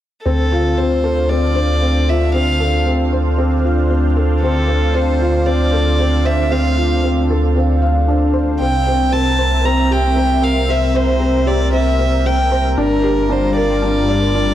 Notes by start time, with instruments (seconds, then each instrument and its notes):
0.25 detuned saw bass D2, felt piano C4, analog synth pad D4 C5 F5, violin A4
0.52 felt piano F4
0.77 felt piano C4, violin C5
1.04 felt piano A4
1.30 felt piano C4, violin D5
1.56 felt piano C5
1.82 felt piano C4
2.09 felt piano F4, violin E5
2.34 felt piano C4, violin F5
2.60 felt piano A4
2.87 felt piano C4
3.12 felt piano C5
3.38 felt piano C4
3.64 felt piano F4
3.91 felt piano C4
4.17 felt piano A4
4.42 felt piano C4, violin A4
4.69 felt piano C5
4.94 felt piano C4, violin C5
5.21 felt piano F4
5.46 felt piano C4, violin D5
5.73 felt piano A4
5.99 felt piano C4
6.25 felt piano C5, violin E5
6.51 felt piano C4, violin F5
6.77 felt piano F4
7.04 felt piano C4
7.30 felt piano A4
7.56 felt piano C4
7.82 felt piano F5
8.08 felt piano D4
8.34 felt piano C5
8.60 detuned saw bass C2, analog synth pad C4 A#4 E5, felt piano C4, violin G5
8.87 felt piano C4
9.12 felt piano C4, violin A5
9.39 felt piano C5
9.65 felt piano C4, violin A#5
9.91 felt piano G4, violin G5
10.16 felt piano C4
10.42 felt piano A#4, violin F5
10.69 felt piano C4, violin E5
10.95 felt piano C5, violin C5
11.20 felt piano C4
11.46 felt piano G4, violin D5
11.73 felt piano C4, violin E5
11.99 felt piano C4
12.25 felt piano C4, violin G5
12.52 felt piano C5
12.77 detuned saw bass G1, analog synth pad G3 F4, felt piano D4, violin A#4
13.04 felt piano G4
13.30 felt piano D4, violin C5
13.56 felt piano A#4, violin D5
13.82 felt piano D4
14.08 felt piano D5
14.34 felt piano D4